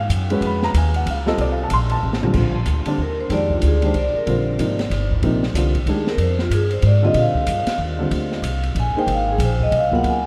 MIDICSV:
0, 0, Header, 1, 6, 480
1, 0, Start_track
1, 0, Tempo, 320513
1, 632, Time_signature, 3, 2, 24, 8
1, 15371, End_track
2, 0, Start_track
2, 0, Title_t, "Vibraphone"
2, 0, Program_c, 0, 11
2, 4523, Note_on_c, 0, 70, 69
2, 4785, Note_off_c, 0, 70, 0
2, 4798, Note_on_c, 0, 72, 75
2, 4961, Note_off_c, 0, 72, 0
2, 4987, Note_on_c, 0, 74, 92
2, 5257, Note_off_c, 0, 74, 0
2, 5293, Note_on_c, 0, 65, 61
2, 5449, Note_off_c, 0, 65, 0
2, 5493, Note_on_c, 0, 68, 75
2, 5751, Note_off_c, 0, 68, 0
2, 5776, Note_on_c, 0, 72, 92
2, 5930, Note_off_c, 0, 72, 0
2, 5968, Note_on_c, 0, 74, 84
2, 6228, Note_off_c, 0, 74, 0
2, 6239, Note_on_c, 0, 70, 78
2, 6402, Note_off_c, 0, 70, 0
2, 6436, Note_on_c, 0, 72, 73
2, 7794, Note_off_c, 0, 72, 0
2, 8832, Note_on_c, 0, 68, 67
2, 9100, Note_off_c, 0, 68, 0
2, 9105, Note_on_c, 0, 70, 79
2, 9275, Note_off_c, 0, 70, 0
2, 9311, Note_on_c, 0, 72, 81
2, 9580, Note_off_c, 0, 72, 0
2, 9607, Note_on_c, 0, 65, 69
2, 9766, Note_off_c, 0, 65, 0
2, 9796, Note_on_c, 0, 68, 77
2, 10062, Note_off_c, 0, 68, 0
2, 10074, Note_on_c, 0, 72, 94
2, 10240, Note_off_c, 0, 72, 0
2, 10283, Note_on_c, 0, 74, 81
2, 10546, Note_off_c, 0, 74, 0
2, 10556, Note_on_c, 0, 75, 96
2, 10721, Note_off_c, 0, 75, 0
2, 10764, Note_on_c, 0, 77, 80
2, 11638, Note_off_c, 0, 77, 0
2, 13175, Note_on_c, 0, 80, 86
2, 13432, Note_off_c, 0, 80, 0
2, 13457, Note_on_c, 0, 79, 95
2, 13612, Note_off_c, 0, 79, 0
2, 13665, Note_on_c, 0, 77, 80
2, 13917, Note_off_c, 0, 77, 0
2, 13950, Note_on_c, 0, 68, 68
2, 14099, Note_off_c, 0, 68, 0
2, 14149, Note_on_c, 0, 72, 70
2, 14400, Note_off_c, 0, 72, 0
2, 14423, Note_on_c, 0, 75, 98
2, 14575, Note_off_c, 0, 75, 0
2, 14628, Note_on_c, 0, 77, 90
2, 14880, Note_off_c, 0, 77, 0
2, 14903, Note_on_c, 0, 78, 93
2, 15055, Note_off_c, 0, 78, 0
2, 15121, Note_on_c, 0, 80, 79
2, 15366, Note_off_c, 0, 80, 0
2, 15371, End_track
3, 0, Start_track
3, 0, Title_t, "Upright piano"
3, 0, Program_c, 1, 0
3, 454, Note_on_c, 1, 56, 77
3, 464, Note_on_c, 1, 61, 71
3, 477, Note_on_c, 1, 66, 71
3, 482, Note_on_c, 1, 71, 83
3, 687, Note_on_c, 1, 83, 84
3, 948, Note_off_c, 1, 83, 0
3, 960, Note_on_c, 1, 82, 94
3, 1077, Note_off_c, 1, 56, 0
3, 1082, Note_off_c, 1, 61, 0
3, 1089, Note_off_c, 1, 66, 0
3, 1091, Note_off_c, 1, 71, 0
3, 1122, Note_off_c, 1, 82, 0
3, 1159, Note_on_c, 1, 80, 85
3, 1424, Note_off_c, 1, 80, 0
3, 1440, Note_on_c, 1, 78, 96
3, 1602, Note_off_c, 1, 78, 0
3, 1653, Note_on_c, 1, 77, 79
3, 1885, Note_on_c, 1, 55, 79
3, 1892, Note_on_c, 1, 60, 69
3, 1900, Note_on_c, 1, 65, 75
3, 1911, Note_off_c, 1, 77, 0
3, 1912, Note_on_c, 1, 69, 95
3, 1912, Note_on_c, 1, 75, 88
3, 2078, Note_off_c, 1, 75, 0
3, 2115, Note_on_c, 1, 74, 86
3, 2249, Note_off_c, 1, 74, 0
3, 2274, Note_on_c, 1, 77, 79
3, 2408, Note_off_c, 1, 77, 0
3, 2448, Note_on_c, 1, 81, 91
3, 2512, Note_off_c, 1, 55, 0
3, 2516, Note_off_c, 1, 60, 0
3, 2520, Note_off_c, 1, 65, 0
3, 2526, Note_off_c, 1, 69, 0
3, 2575, Note_off_c, 1, 81, 0
3, 2598, Note_on_c, 1, 84, 106
3, 2863, Note_off_c, 1, 84, 0
3, 2870, Note_on_c, 1, 81, 100
3, 3327, Note_on_c, 1, 50, 69
3, 3335, Note_on_c, 1, 55, 68
3, 3344, Note_on_c, 1, 60, 61
3, 3353, Note_on_c, 1, 65, 74
3, 3391, Note_off_c, 1, 81, 0
3, 3502, Note_off_c, 1, 50, 0
3, 3505, Note_off_c, 1, 55, 0
3, 3520, Note_off_c, 1, 60, 0
3, 3525, Note_on_c, 1, 50, 66
3, 3528, Note_on_c, 1, 55, 57
3, 3533, Note_off_c, 1, 65, 0
3, 3542, Note_on_c, 1, 60, 57
3, 3555, Note_on_c, 1, 65, 71
3, 3785, Note_off_c, 1, 50, 0
3, 3786, Note_off_c, 1, 55, 0
3, 3793, Note_off_c, 1, 60, 0
3, 3800, Note_off_c, 1, 65, 0
3, 4283, Note_on_c, 1, 50, 68
3, 4292, Note_on_c, 1, 55, 59
3, 4300, Note_on_c, 1, 60, 64
3, 4310, Note_on_c, 1, 62, 80
3, 4450, Note_off_c, 1, 50, 0
3, 4455, Note_off_c, 1, 55, 0
3, 4459, Note_off_c, 1, 60, 0
3, 4463, Note_off_c, 1, 62, 0
3, 4945, Note_on_c, 1, 51, 61
3, 4957, Note_on_c, 1, 56, 54
3, 4966, Note_on_c, 1, 62, 56
3, 4976, Note_on_c, 1, 67, 65
3, 5665, Note_off_c, 1, 51, 0
3, 5671, Note_off_c, 1, 56, 0
3, 5676, Note_off_c, 1, 62, 0
3, 5681, Note_off_c, 1, 67, 0
3, 5728, Note_on_c, 1, 51, 67
3, 5735, Note_on_c, 1, 56, 57
3, 5753, Note_on_c, 1, 62, 57
3, 5753, Note_on_c, 1, 67, 75
3, 5893, Note_off_c, 1, 51, 0
3, 5896, Note_off_c, 1, 56, 0
3, 5905, Note_off_c, 1, 62, 0
3, 5905, Note_off_c, 1, 67, 0
3, 6388, Note_on_c, 1, 50, 69
3, 6399, Note_on_c, 1, 55, 63
3, 6410, Note_on_c, 1, 60, 60
3, 6418, Note_on_c, 1, 65, 71
3, 6851, Note_off_c, 1, 50, 0
3, 6857, Note_off_c, 1, 55, 0
3, 6862, Note_off_c, 1, 60, 0
3, 6866, Note_off_c, 1, 65, 0
3, 6870, Note_on_c, 1, 48, 61
3, 6879, Note_on_c, 1, 53, 55
3, 6893, Note_on_c, 1, 58, 60
3, 6898, Note_on_c, 1, 63, 67
3, 7138, Note_off_c, 1, 48, 0
3, 7142, Note_off_c, 1, 53, 0
3, 7149, Note_off_c, 1, 58, 0
3, 7152, Note_off_c, 1, 63, 0
3, 7840, Note_on_c, 1, 48, 79
3, 7842, Note_on_c, 1, 53, 72
3, 7861, Note_on_c, 1, 58, 68
3, 7866, Note_on_c, 1, 63, 78
3, 8103, Note_off_c, 1, 48, 0
3, 8104, Note_off_c, 1, 53, 0
3, 8114, Note_off_c, 1, 58, 0
3, 8116, Note_off_c, 1, 63, 0
3, 8320, Note_on_c, 1, 50, 63
3, 8326, Note_on_c, 1, 55, 61
3, 8334, Note_on_c, 1, 60, 63
3, 8344, Note_on_c, 1, 65, 76
3, 8583, Note_off_c, 1, 50, 0
3, 8586, Note_off_c, 1, 55, 0
3, 8590, Note_off_c, 1, 60, 0
3, 8595, Note_off_c, 1, 65, 0
3, 8801, Note_on_c, 1, 51, 61
3, 8811, Note_on_c, 1, 56, 56
3, 8819, Note_on_c, 1, 62, 60
3, 8826, Note_on_c, 1, 67, 66
3, 9064, Note_off_c, 1, 51, 0
3, 9069, Note_off_c, 1, 56, 0
3, 9073, Note_off_c, 1, 62, 0
3, 9076, Note_off_c, 1, 67, 0
3, 10523, Note_on_c, 1, 50, 77
3, 10536, Note_on_c, 1, 55, 68
3, 10542, Note_on_c, 1, 60, 72
3, 10547, Note_on_c, 1, 65, 86
3, 11152, Note_off_c, 1, 50, 0
3, 11159, Note_off_c, 1, 55, 0
3, 11162, Note_off_c, 1, 60, 0
3, 11165, Note_off_c, 1, 65, 0
3, 11963, Note_on_c, 1, 50, 70
3, 11975, Note_on_c, 1, 55, 64
3, 11988, Note_on_c, 1, 60, 64
3, 11992, Note_on_c, 1, 65, 78
3, 12592, Note_off_c, 1, 50, 0
3, 12599, Note_off_c, 1, 55, 0
3, 12605, Note_off_c, 1, 60, 0
3, 12607, Note_off_c, 1, 65, 0
3, 13415, Note_on_c, 1, 58, 75
3, 13430, Note_on_c, 1, 63, 71
3, 13435, Note_on_c, 1, 68, 68
3, 13450, Note_on_c, 1, 72, 80
3, 14039, Note_off_c, 1, 58, 0
3, 14046, Note_off_c, 1, 63, 0
3, 14049, Note_off_c, 1, 68, 0
3, 14056, Note_off_c, 1, 72, 0
3, 14840, Note_on_c, 1, 39, 70
3, 14846, Note_on_c, 1, 54, 64
3, 14863, Note_on_c, 1, 59, 68
3, 14866, Note_on_c, 1, 65, 66
3, 14875, Note_on_c, 1, 70, 78
3, 15371, Note_off_c, 1, 39, 0
3, 15371, Note_off_c, 1, 54, 0
3, 15371, Note_off_c, 1, 59, 0
3, 15371, Note_off_c, 1, 65, 0
3, 15371, Note_off_c, 1, 70, 0
3, 15371, End_track
4, 0, Start_track
4, 0, Title_t, "Upright bass"
4, 0, Program_c, 2, 32
4, 139, Note_on_c, 2, 42, 94
4, 604, Note_off_c, 2, 42, 0
4, 613, Note_on_c, 2, 41, 95
4, 1087, Note_off_c, 2, 41, 0
4, 1109, Note_on_c, 2, 39, 89
4, 1576, Note_off_c, 2, 39, 0
4, 1589, Note_on_c, 2, 37, 97
4, 2055, Note_off_c, 2, 37, 0
4, 2066, Note_on_c, 2, 36, 93
4, 2534, Note_off_c, 2, 36, 0
4, 2558, Note_on_c, 2, 34, 90
4, 3020, Note_off_c, 2, 34, 0
4, 3038, Note_on_c, 2, 33, 90
4, 3489, Note_off_c, 2, 33, 0
4, 3498, Note_on_c, 2, 34, 86
4, 3970, Note_off_c, 2, 34, 0
4, 3982, Note_on_c, 2, 38, 83
4, 4262, Note_off_c, 2, 38, 0
4, 4461, Note_on_c, 2, 39, 83
4, 4928, Note_off_c, 2, 39, 0
4, 4937, Note_on_c, 2, 41, 91
4, 5409, Note_off_c, 2, 41, 0
4, 5432, Note_on_c, 2, 38, 87
4, 5892, Note_off_c, 2, 38, 0
4, 5901, Note_on_c, 2, 36, 79
4, 6182, Note_off_c, 2, 36, 0
4, 6391, Note_on_c, 2, 34, 81
4, 6857, Note_off_c, 2, 34, 0
4, 6873, Note_on_c, 2, 32, 89
4, 7333, Note_off_c, 2, 32, 0
4, 7342, Note_on_c, 2, 31, 91
4, 7812, Note_off_c, 2, 31, 0
4, 7824, Note_on_c, 2, 34, 92
4, 8289, Note_off_c, 2, 34, 0
4, 8298, Note_on_c, 2, 36, 84
4, 8770, Note_off_c, 2, 36, 0
4, 8778, Note_on_c, 2, 38, 82
4, 9239, Note_off_c, 2, 38, 0
4, 9248, Note_on_c, 2, 41, 89
4, 9725, Note_off_c, 2, 41, 0
4, 9736, Note_on_c, 2, 43, 90
4, 10209, Note_off_c, 2, 43, 0
4, 10224, Note_on_c, 2, 44, 96
4, 10689, Note_off_c, 2, 44, 0
4, 10698, Note_on_c, 2, 46, 91
4, 10981, Note_off_c, 2, 46, 0
4, 11182, Note_on_c, 2, 43, 93
4, 11462, Note_off_c, 2, 43, 0
4, 11650, Note_on_c, 2, 39, 89
4, 12126, Note_off_c, 2, 39, 0
4, 12146, Note_on_c, 2, 38, 99
4, 12602, Note_off_c, 2, 38, 0
4, 12611, Note_on_c, 2, 36, 91
4, 13087, Note_off_c, 2, 36, 0
4, 13103, Note_on_c, 2, 34, 91
4, 13383, Note_off_c, 2, 34, 0
4, 13578, Note_on_c, 2, 32, 92
4, 14043, Note_off_c, 2, 32, 0
4, 14052, Note_on_c, 2, 34, 95
4, 14528, Note_off_c, 2, 34, 0
4, 14551, Note_on_c, 2, 36, 93
4, 15018, Note_off_c, 2, 36, 0
4, 15026, Note_on_c, 2, 37, 88
4, 15371, Note_off_c, 2, 37, 0
4, 15371, End_track
5, 0, Start_track
5, 0, Title_t, "Muted upright bass strokes"
5, 4279, Note_on_c, 9, 29, 40
5, 4429, Note_off_c, 9, 29, 0
5, 6205, Note_on_c, 9, 29, 40
5, 6354, Note_off_c, 9, 29, 0
5, 11003, Note_on_c, 9, 29, 40
5, 11153, Note_off_c, 9, 29, 0
5, 11473, Note_on_c, 9, 29, 39
5, 11623, Note_off_c, 9, 29, 0
5, 13396, Note_on_c, 9, 29, 43
5, 13546, Note_off_c, 9, 29, 0
5, 15371, End_track
6, 0, Start_track
6, 0, Title_t, "Drums"
6, 148, Note_on_c, 9, 44, 62
6, 148, Note_on_c, 9, 51, 79
6, 298, Note_off_c, 9, 44, 0
6, 298, Note_off_c, 9, 51, 0
6, 450, Note_on_c, 9, 51, 50
6, 599, Note_off_c, 9, 51, 0
6, 629, Note_on_c, 9, 51, 60
6, 779, Note_off_c, 9, 51, 0
6, 934, Note_on_c, 9, 38, 52
6, 1084, Note_off_c, 9, 38, 0
6, 1114, Note_on_c, 9, 44, 55
6, 1114, Note_on_c, 9, 51, 78
6, 1264, Note_off_c, 9, 44, 0
6, 1264, Note_off_c, 9, 51, 0
6, 1410, Note_on_c, 9, 51, 49
6, 1560, Note_off_c, 9, 51, 0
6, 1596, Note_on_c, 9, 51, 69
6, 1745, Note_off_c, 9, 51, 0
6, 1896, Note_on_c, 9, 38, 59
6, 2046, Note_off_c, 9, 38, 0
6, 2070, Note_on_c, 9, 51, 60
6, 2220, Note_off_c, 9, 51, 0
6, 2544, Note_on_c, 9, 44, 62
6, 2544, Note_on_c, 9, 51, 77
6, 2694, Note_off_c, 9, 44, 0
6, 2694, Note_off_c, 9, 51, 0
6, 2838, Note_on_c, 9, 51, 48
6, 2988, Note_off_c, 9, 51, 0
6, 3193, Note_on_c, 9, 38, 66
6, 3340, Note_on_c, 9, 43, 92
6, 3342, Note_off_c, 9, 38, 0
6, 3490, Note_off_c, 9, 43, 0
6, 3497, Note_on_c, 9, 49, 67
6, 3507, Note_on_c, 9, 36, 62
6, 3647, Note_off_c, 9, 49, 0
6, 3657, Note_off_c, 9, 36, 0
6, 3977, Note_on_c, 9, 44, 60
6, 3977, Note_on_c, 9, 51, 62
6, 4127, Note_off_c, 9, 44, 0
6, 4127, Note_off_c, 9, 51, 0
6, 4276, Note_on_c, 9, 51, 59
6, 4426, Note_off_c, 9, 51, 0
6, 4940, Note_on_c, 9, 51, 59
6, 4946, Note_on_c, 9, 38, 33
6, 5090, Note_off_c, 9, 51, 0
6, 5096, Note_off_c, 9, 38, 0
6, 5243, Note_on_c, 9, 36, 50
6, 5393, Note_off_c, 9, 36, 0
6, 5415, Note_on_c, 9, 44, 54
6, 5415, Note_on_c, 9, 51, 68
6, 5565, Note_off_c, 9, 44, 0
6, 5565, Note_off_c, 9, 51, 0
6, 5721, Note_on_c, 9, 51, 45
6, 5871, Note_off_c, 9, 51, 0
6, 5901, Note_on_c, 9, 51, 53
6, 6051, Note_off_c, 9, 51, 0
6, 6392, Note_on_c, 9, 51, 58
6, 6542, Note_off_c, 9, 51, 0
6, 6874, Note_on_c, 9, 44, 54
6, 6874, Note_on_c, 9, 51, 70
6, 7024, Note_off_c, 9, 44, 0
6, 7024, Note_off_c, 9, 51, 0
6, 7173, Note_on_c, 9, 51, 43
6, 7179, Note_on_c, 9, 38, 52
6, 7323, Note_off_c, 9, 51, 0
6, 7329, Note_off_c, 9, 38, 0
6, 7356, Note_on_c, 9, 51, 61
6, 7362, Note_on_c, 9, 38, 35
6, 7506, Note_off_c, 9, 51, 0
6, 7512, Note_off_c, 9, 38, 0
6, 7652, Note_on_c, 9, 36, 55
6, 7801, Note_off_c, 9, 36, 0
6, 7826, Note_on_c, 9, 51, 61
6, 7976, Note_off_c, 9, 51, 0
6, 8132, Note_on_c, 9, 38, 48
6, 8281, Note_off_c, 9, 38, 0
6, 8315, Note_on_c, 9, 44, 65
6, 8315, Note_on_c, 9, 51, 74
6, 8321, Note_on_c, 9, 38, 38
6, 8465, Note_off_c, 9, 44, 0
6, 8465, Note_off_c, 9, 51, 0
6, 8471, Note_off_c, 9, 38, 0
6, 8607, Note_on_c, 9, 51, 47
6, 8612, Note_on_c, 9, 36, 58
6, 8757, Note_off_c, 9, 51, 0
6, 8762, Note_off_c, 9, 36, 0
6, 8786, Note_on_c, 9, 51, 64
6, 8936, Note_off_c, 9, 51, 0
6, 9089, Note_on_c, 9, 38, 50
6, 9238, Note_off_c, 9, 38, 0
6, 9257, Note_on_c, 9, 51, 62
6, 9407, Note_off_c, 9, 51, 0
6, 9567, Note_on_c, 9, 38, 47
6, 9716, Note_off_c, 9, 38, 0
6, 9754, Note_on_c, 9, 44, 64
6, 9754, Note_on_c, 9, 51, 74
6, 9904, Note_off_c, 9, 44, 0
6, 9904, Note_off_c, 9, 51, 0
6, 10041, Note_on_c, 9, 51, 46
6, 10191, Note_off_c, 9, 51, 0
6, 10217, Note_on_c, 9, 51, 59
6, 10367, Note_off_c, 9, 51, 0
6, 10695, Note_on_c, 9, 51, 68
6, 10845, Note_off_c, 9, 51, 0
6, 11008, Note_on_c, 9, 36, 62
6, 11157, Note_off_c, 9, 36, 0
6, 11180, Note_on_c, 9, 44, 62
6, 11180, Note_on_c, 9, 51, 74
6, 11330, Note_off_c, 9, 44, 0
6, 11330, Note_off_c, 9, 51, 0
6, 11480, Note_on_c, 9, 51, 68
6, 11486, Note_on_c, 9, 38, 55
6, 11630, Note_off_c, 9, 51, 0
6, 11636, Note_off_c, 9, 38, 0
6, 12149, Note_on_c, 9, 51, 68
6, 12299, Note_off_c, 9, 51, 0
6, 12456, Note_on_c, 9, 38, 37
6, 12606, Note_off_c, 9, 38, 0
6, 12633, Note_on_c, 9, 44, 61
6, 12633, Note_on_c, 9, 51, 74
6, 12782, Note_off_c, 9, 44, 0
6, 12782, Note_off_c, 9, 51, 0
6, 12930, Note_on_c, 9, 51, 50
6, 13080, Note_off_c, 9, 51, 0
6, 13113, Note_on_c, 9, 51, 66
6, 13263, Note_off_c, 9, 51, 0
6, 13593, Note_on_c, 9, 51, 62
6, 13742, Note_off_c, 9, 51, 0
6, 14074, Note_on_c, 9, 44, 49
6, 14074, Note_on_c, 9, 51, 76
6, 14223, Note_off_c, 9, 44, 0
6, 14223, Note_off_c, 9, 51, 0
6, 14377, Note_on_c, 9, 36, 54
6, 14527, Note_off_c, 9, 36, 0
6, 14556, Note_on_c, 9, 51, 58
6, 14706, Note_off_c, 9, 51, 0
6, 14861, Note_on_c, 9, 36, 65
6, 15011, Note_off_c, 9, 36, 0
6, 15037, Note_on_c, 9, 51, 58
6, 15187, Note_off_c, 9, 51, 0
6, 15371, End_track
0, 0, End_of_file